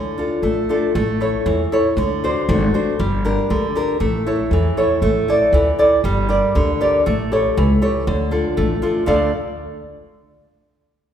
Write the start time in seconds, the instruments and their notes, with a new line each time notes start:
Already playing: upright bass D2, nylon-string guitar D3
0.18 nylon-string guitar D4 F4 A4
0.42 upright bass A1, nylon-string guitar A3
0.69 nylon-string guitar D4 F4 A4
0.95 upright bass A1, nylon-string guitar A3
1.20 nylon-string guitar E4 A4 C#5
1.46 upright bass E2, nylon-string guitar E3
1.72 nylon-string guitar E4 A4 C#5
1.97 upright bass D2, nylon-string guitar D3
2.24 nylon-string guitar D4 F#4 C5
2.49 upright bass G#1, nylon-string guitar A3
2.74 nylon-string guitar D4 F#4 C5
2.99 upright bass G1, nylon-string guitar G3
3.25 nylon-string guitar D4 G4 A#4
3.50 upright bass D2, nylon-string guitar D3
3.75 nylon-string guitar D4 G4 A#4
4.00 upright bass A1, nylon-string guitar A3
4.26 nylon-string guitar E4 A4 C#5
4.51 upright bass E2, nylon-string guitar E3
4.77 nylon-string guitar E4 A4 C#5
5.02 upright bass A1, nylon-string guitar A3
5.28 nylon-string guitar E4 A4 D5
5.53 upright bass D2, nylon-string guitar E3
5.79 nylon-string guitar E4 A4 D5
6.04 upright bass G1, nylon-string guitar G3
6.29 nylon-string guitar G4 A#4 D5
6.55 upright bass D2, nylon-string guitar D3
6.81 nylon-string guitar G4 A#4 D5
7.06 upright bass A1, nylon-string guitar A3
7.32 nylon-string guitar G4 A4 C#5
7.57 upright bass C#2, nylon-string guitar E3
7.82 nylon-string guitar G4 A4 C#5
8.07 upright bass D2, nylon-string guitar D3
8.31 nylon-string guitar D4 F4 A4
8.57 upright bass A1, nylon-string guitar A3
8.82 nylon-string guitar D4 F4 A4
9.06 upright bass D2, nylon-string guitar D3 A3 D4 A4 D5 F5